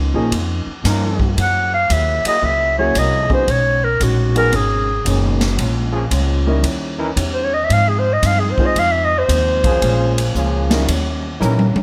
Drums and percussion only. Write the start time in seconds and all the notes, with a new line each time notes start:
0.32 kick, ride
0.84 kick, snare, hi-hat pedal, ride
1.20 kick
1.37 kick, ride
1.90 kick, hi-hat pedal, ride
2.25 ride
2.42 kick
2.95 kick, hi-hat pedal, ride
3.30 kick
3.48 kick, ride
4.00 kick, hi-hat pedal, ride
4.36 ride
4.53 kick, ride
5.05 kick, hi-hat pedal, ride
5.41 snare, ride
5.58 kick, ride
6.11 kick, hi-hat pedal, ride
6.64 kick, ride
7.17 kick, hi-hat pedal, ride
7.70 kick, ride
8.23 kick, hi-hat pedal, ride
8.58 kick
8.76 kick, ride
9.29 kick, hi-hat pedal, ride
9.64 kick, ride
9.82 kick, ride
10.18 ride
10.35 kick, hi-hat pedal
10.71 snare, ride
10.88 kick, ride
11.42 hi-hat pedal, high tom
11.59 high tom
11.76 high tom